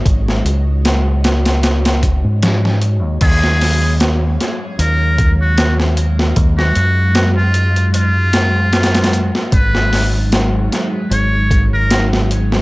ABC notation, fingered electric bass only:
X:1
M:4/4
L:1/16
Q:"Swing 16ths" 1/4=76
K:Ebm
V:1 name="Fingered electric bass" clef=bass
A,,,2 D,,8- D,, A,,4 E,, | E,,6 z2 E,,8 | E,,2 G,,12- G,, z | A,,,6 z2 A,,,8 |]